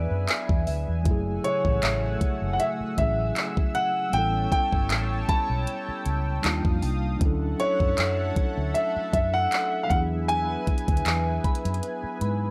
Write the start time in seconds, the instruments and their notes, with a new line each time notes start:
Already playing: tine electric piano F#3 B3 D4 E4 G#4, analog synth pad B4 E5 G#5, synth bell D5, grand piano E5
0.11 fingered electric bass F#2
0.28 clap, closed hi-hat
0.49 fingered electric bass E2, kick
0.67 fingered electric bass D2, synth bell E5, open hi-hat
0.88 fingered electric bass E2
1.03 fingered electric bass F#1, tine electric piano F#3 A3, analog synth pad A3 F#5 E6, kick, closed hi-hat
1.07 tine electric piano C#3 E4
1.11 tine electric piano G#4
1.44 grand piano C#5, closed hi-hat
1.65 fingered electric bass A1, kick
1.83 fingered electric bass A1, synth bell E5, clap, closed hi-hat
2.21 kick, closed hi-hat
2.42 fingered electric bass F#1
2.53 grand piano F#5
2.60 grand piano E5, closed hi-hat
2.81 muted fingered electric bass stroke
2.97 fingered electric bass A1, tine electric piano F#3 A3 C#4 E4, grand piano E5, kick, closed hi-hat
3.01 tine electric piano G#4
3.36 clap, closed hi-hat
3.57 kick
3.74 grand piano F#5, synth bell F#6, closed hi-hat
4.10 fingered electric bass A1, tine electric piano G3 B3, analog synth pad C#5 G5 A5, grand piano G5, closed hi-hat
4.14 tine electric piano C4 E4
4.18 tine electric piano C#4 A4
4.52 grand piano G5, synth bell G5, kick, closed hi-hat
4.73 fingered electric bass G1, kick
4.90 fingered electric bass A1, clap, closed hi-hat
5.29 grand piano A5, synth bell B5, kick, closed hi-hat
5.50 fingered electric bass B1
5.67 closed hi-hat
5.88 muted fingered electric bass stroke
6.06 fingered electric bass C#2, closed hi-hat
6.42 fingered electric bass D#2, tine electric piano G3 D4 D#4 F4, analog synth pad F5 D#6, clap, closed hi-hat
6.46 tine electric piano A#3
6.65 fingered electric bass F2, kick
6.82 fingered electric bass C2, synth bell A5, open hi-hat
7.18 fingered electric bass D2, tine electric piano F#3 C#4, analog synth pad A4 E5 F#5, kick, closed hi-hat
7.22 tine electric piano D4 E4
7.26 tine electric piano A4
7.60 grand piano C#5, closed hi-hat
7.80 fingered electric bass F#2, kick
7.98 fingered electric bass F#2, clap, closed hi-hat
8.36 kick, closed hi-hat
8.58 fingered electric bass D2
8.74 grand piano E5, closed hi-hat
8.96 muted fingered electric bass stroke
9.13 fingered electric bass F#2, grand piano E5, kick, closed hi-hat
9.34 grand piano F#5
9.52 clap, closed hi-hat
9.83 tine electric piano F#3, grand piano F5
9.89 fingered electric bass E2, tine electric piano B3 D4 E4, analog synth pad B4 G#5, grand piano F#5, kick, closed hi-hat
9.95 tine electric piano G#4
10.28 grand piano G#5, synth bell G#5, closed hi-hat
10.67 kick, closed hi-hat
10.78 closed hi-hat
10.88 fingered electric bass D2, kick, closed hi-hat
10.97 closed hi-hat
11.06 fingered electric bass E2, clap, closed hi-hat
11.44 synth bell B5, kick, closed hi-hat
11.55 closed hi-hat
11.65 fingered electric bass F#2, closed hi-hat
11.74 closed hi-hat
11.83 closed hi-hat
12.04 muted fingered electric bass stroke
12.21 fingered electric bass G#2, synth bell B5, closed hi-hat